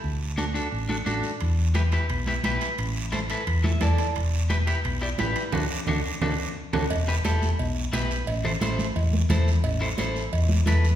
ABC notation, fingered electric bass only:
X:1
M:4/4
L:1/8
Q:1/4=175
K:Em
V:1 name="Fingered electric bass" clef=bass
D,,4 A,,,2 A,,, z | E,,4 B,,,2 B,,, z | A,,,4 E,,2 E,, z | E,,,4 B,,,2 A,,, z |
D,, z D,, z D,, z2 D,, | E,,,2 E,,,2 B,,,2 B,,,2 | A,,,2 A,,,2 E,,2 E,,2 | A,,,2 A,,,2 E,,2 E,,2 |]